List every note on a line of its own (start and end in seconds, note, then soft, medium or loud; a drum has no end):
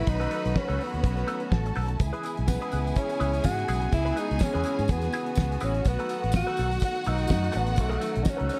0.00 1.96 D#3 medium
0.00 1.96 F#3 medium
0.00 1.96 A3 medium
0.00 1.96 F#4 loud
0.00 1.47 B4 loud
0.00 1.47 B5 loud
0.06 0.26 B1 loud
0.06 1.99 C#4 medium
0.06 0.59 D#4 loud
0.06 muted clean electric guitar stroke soft
0.06 kick loud
0.06 closed hi-hat medium
0.20 0.30 D#4 medium
0.20 0.30 A4 medium
0.20 0.31 B4 loud
0.20 closed hi-hat medium
0.31 0.45 D#4 medium
0.31 0.44 A4 medium
0.31 0.43 B4 medium
0.31 closed hi-hat medium
0.44 0.53 B1 medium
0.44 muted clean electric guitar stroke soft
0.44 closed hi-hat medium
0.54 0.85 C#4 medium
0.54 muted clean electric guitar stroke soft
0.54 kick loud
0.54 snare loud
0.68 0.77 C#2 loud
0.68 0.77 D#4 medium
0.68 0.78 A4 medium
0.68 0.78 B4 medium
0.68 closed hi-hat soft
0.78 0.92 D#4 medium
0.78 0.92 A4 medium
0.78 0.91 B4 medium
0.78 open hi-hat medium
0.83 1.78 B3 loud
0.92 1.02 D#2 medium
0.92 muted clean electric guitar stroke soft
0.92 closed hi-hat soft
1.03 1.22 B1 loud
1.03 muted clean electric guitar stroke soft
1.03 kick loud
1.03 closed hi-hat loud
1.16 muted clean electric guitar stroke soft
1.16 snare soft
1.16 closed hi-hat soft
1.27 1.44 D#4 loud
1.27 1.41 A4 medium
1.27 1.40 B4 loud
1.27 closed hi-hat medium
1.40 muted clean electric guitar stroke soft
1.40 closed hi-hat soft
1.52 1.70 A1 loud
1.52 1.99 A4 medium
1.52 1.99 A5 medium
1.52 muted clean electric guitar stroke soft
1.52 kick loud
1.52 snare loud
1.66 muted clean electric guitar stroke medium
1.66 closed hi-hat soft
1.75 1.95 B1 loud
1.75 1.92 D#4 medium
1.75 1.89 A4 medium
1.75 1.88 B4 medium
1.75 open hi-hat medium
1.88 muted clean electric guitar stroke medium
1.88 closed hi-hat medium
1.99 2.10 C#2 loud
1.99 5.81 C#3 medium
1.99 5.81 E3 medium
1.99 5.81 G#3 medium
1.99 7.74 B3 medium
1.99 3.90 E4 loud
1.99 5.81 G#4 medium
1.99 5.81 G#5 loud
1.99 muted clean electric guitar stroke soft
1.99 kick loud
1.99 closed hi-hat medium
1.99 tambourine medium
2.13 2.23 E4 medium
2.13 2.24 G#4 medium
2.13 2.24 B4 medium
2.13 closed hi-hat soft
2.23 2.37 E4 medium
2.23 2.36 G#4 medium
2.23 2.36 B4 medium
2.23 closed hi-hat medium
2.23 tambourine medium
2.37 2.57 B1 loud
2.37 muted clean electric guitar stroke medium
2.37 closed hi-hat soft
2.48 2.98 B3 loud
2.48 muted clean electric guitar stroke soft
2.48 kick loud
2.48 snare loud
2.48 tambourine loud
2.61 2.70 E4 medium
2.61 2.71 G#4 medium
2.61 2.71 B4 medium
2.61 closed hi-hat soft
2.71 2.91 C#2 loud
2.71 2.85 E4 medium
2.71 2.85 G#4 medium
2.71 2.84 B4 medium
2.71 closed hi-hat medium
2.71 tambourine medium
2.85 muted clean electric guitar stroke soft
2.85 closed hi-hat soft
2.85 tambourine soft
2.96 3.44 C#4 loud
2.96 muted clean electric guitar stroke soft
2.96 kick loud
2.96 closed hi-hat loud
2.96 tambourine medium
3.09 muted clean electric guitar stroke soft
3.09 closed hi-hat soft
3.09 tambourine soft
3.20 3.39 C#2 loud
3.20 3.36 E4 medium
3.20 3.33 G#4 medium
3.20 3.32 B4 loud
3.20 closed hi-hat medium
3.20 tambourine soft
3.33 muted clean electric guitar stroke soft
3.33 closed hi-hat soft
3.33 tambourine soft
3.44 3.63 G#2 medium
3.44 3.90 F#4 loud
3.44 muted clean electric guitar stroke medium
3.44 kick loud
3.44 snare loud
3.44 tambourine medium
3.58 muted clean electric guitar stroke soft
3.58 closed hi-hat soft
3.68 3.87 B1 medium
3.68 3.85 E4 medium
3.68 3.81 G#4 medium
3.68 3.80 B4 medium
3.68 closed hi-hat medium
3.68 tambourine medium
3.81 muted clean electric guitar stroke soft
3.81 closed hi-hat medium
3.92 4.11 C#2 loud
3.92 4.20 E4 loud
3.92 8.60 F#4 medium
3.92 muted clean electric guitar stroke soft
3.92 kick loud
3.92 closed hi-hat medium
3.92 tambourine medium
4.05 4.14 E4 medium
4.05 4.15 G#4 medium
4.05 4.15 B4 medium
4.05 closed hi-hat medium
4.15 4.44 D#4 loud
4.15 4.29 E4 medium
4.15 4.29 G#4 medium
4.15 4.28 B4 medium
4.15 closed hi-hat medium
4.15 tambourine medium
4.29 4.39 C#2 loud
4.29 muted clean electric guitar stroke soft
4.29 closed hi-hat medium
4.39 4.92 C#4 loud
4.39 muted clean electric guitar stroke soft
4.39 kick loud
4.39 snare loud
4.39 tambourine medium
4.54 4.63 E2 medium
4.54 4.63 E4 medium
4.54 4.64 G#4 medium
4.54 4.65 B4 medium
4.54 closed hi-hat soft
4.64 4.78 E4 medium
4.64 4.78 G#4 medium
4.64 4.77 B4 medium
4.64 closed hi-hat medium
4.64 tambourine medium
4.78 4.87 G#2 loud
4.78 muted clean electric guitar stroke medium
4.78 closed hi-hat soft
4.78 tambourine soft
4.88 5.07 E2 loud
4.88 5.65 B3 loud
4.88 muted clean electric guitar stroke soft
4.88 kick loud
4.88 closed hi-hat loud
4.88 tambourine medium
5.01 muted clean electric guitar stroke soft
5.01 snare soft
5.01 closed hi-hat soft
5.01 tambourine soft
5.12 5.30 E4 loud
5.12 5.26 G#4 loud
5.12 5.25 B4 loud
5.12 closed hi-hat medium
5.12 tambourine medium
5.26 muted clean electric guitar stroke soft
5.26 closed hi-hat soft
5.35 5.56 C#2 loud
5.35 muted clean electric guitar stroke medium
5.35 kick loud
5.35 snare loud
5.35 tambourine medium
5.51 muted clean electric guitar stroke soft
5.51 closed hi-hat soft
5.60 5.80 A1 medium
5.60 5.89 C#4 medium
5.60 5.77 E4 medium
5.60 5.75 G#4 medium
5.60 5.73 B4 medium
5.60 closed hi-hat medium
5.60 tambourine medium
5.75 muted clean electric guitar stroke medium
5.75 closed hi-hat soft
5.83 5.96 B1 loud
5.83 8.60 D#3 medium
5.83 8.60 F#3 medium
5.83 8.60 A3 medium
5.83 8.60 F#4 loud
5.83 8.60 F#5 loud
5.83 muted clean electric guitar stroke soft
5.83 kick loud
5.83 closed hi-hat medium
5.83 tambourine medium
5.87 6.34 B3 loud
5.99 6.09 D#4 medium
5.99 6.10 A4 medium
5.99 6.10 B4 medium
5.99 closed hi-hat medium
6.09 6.23 D#4 medium
6.09 6.23 A4 medium
6.09 6.22 B4 medium
6.09 closed hi-hat medium
6.09 tambourine medium
6.23 6.42 A1 medium
6.23 muted clean electric guitar stroke soft
6.23 closed hi-hat medium
6.32 muted clean electric guitar stroke soft
6.32 kick loud
6.32 snare loud
6.32 tambourine medium
6.36 6.80 F#4 loud
6.47 6.57 D#4 medium
6.47 6.57 A4 medium
6.47 6.58 B4 loud
6.47 closed hi-hat soft
6.57 6.77 B1 medium
6.57 6.71 D#4 medium
6.57 6.71 A4 medium
6.57 6.71 B4 medium
6.57 closed hi-hat medium
6.57 tambourine medium
6.71 closed hi-hat soft
6.71 tambourine soft
6.80 muted clean electric guitar stroke soft
6.80 kick loud
6.80 closed hi-hat loud
6.80 tambourine medium
6.85 7.10 F#4 loud
6.95 muted clean electric guitar stroke medium
6.95 closed hi-hat soft
7.04 7.25 B1 loud
7.04 7.22 D#4 loud
7.04 7.59 D#4 loud
7.04 7.19 A4 medium
7.04 7.18 B4 loud
7.04 closed hi-hat medium
7.04 tambourine medium
7.18 muted clean electric guitar stroke soft
7.18 closed hi-hat soft
7.18 tambourine soft
7.27 7.49 F#2 loud
7.27 muted clean electric guitar stroke medium
7.27 kick loud
7.27 snare loud
7.27 tambourine medium
7.42 muted clean electric guitar stroke soft
7.42 closed hi-hat soft
7.52 7.78 A1 loud
7.52 7.69 D#4 medium
7.52 7.66 A4 loud
7.52 7.66 B4 loud
7.52 closed hi-hat medium
7.52 tambourine medium
7.57 7.82 B3 medium
7.66 muted clean electric guitar stroke medium
7.66 closed hi-hat medium
7.76 7.97 B1 loud
7.76 8.60 C#4 medium
7.76 muted clean electric guitar stroke soft
7.76 kick loud
7.76 closed hi-hat medium
7.76 tambourine medium
7.81 8.25 A3 medium
7.89 7.99 D#4 medium
7.89 8.00 A4 medium
7.89 8.00 B4 loud
7.89 closed hi-hat medium
8.00 8.15 D#4 medium
8.00 8.14 A4 medium
8.00 8.13 B4 medium
8.00 closed hi-hat medium
8.00 tambourine medium
8.14 8.24 B1 loud
8.14 muted clean electric guitar stroke medium
8.14 closed hi-hat medium
8.24 8.31 D#4 medium
8.24 muted clean electric guitar stroke soft
8.24 kick loud
8.24 snare loud
8.24 tambourine medium
8.30 8.52 C#4 medium
8.37 8.49 C#2 medium
8.37 8.46 D#4 medium
8.37 8.47 A4 medium
8.37 8.48 B4 loud
8.37 closed hi-hat soft
8.48 8.60 D#4 medium
8.48 8.60 A4 medium
8.48 8.60 B4 medium
8.48 open hi-hat medium
8.48 tambourine medium
8.54 8.60 C#4 medium